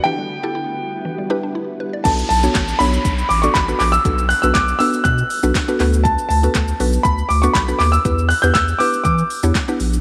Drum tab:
CC |----------------|x---------------|----------------|----------------|
HH |----------------|x-o-x-o-x-o-x-o-|x-o-x-o-x-o-x-o-|x-o-x-o-x-o-x-o-|
SH |----------------|xxxxxxxxxxxxxxxx|xxxxxxxxxxxxxxxx|xxxxxxxxxxxxxxxx|
CP |----------------|----x-------x-x-|----x-------x-x-|----x-------x-x-|
SD |----------------|----o-------o---|----o-------o---|----o-------o---|
BD |----------------|o---o---o---o---|o---o---o---o---|o---o---o---o---|

CC |----------------|
HH |x-o-x-o-x-o-x-o-|
SH |xxxxxxxxxxxxxxxx|
CP |----x-------x---|
SD |----o-------o---|
BD |o---o---o---o---|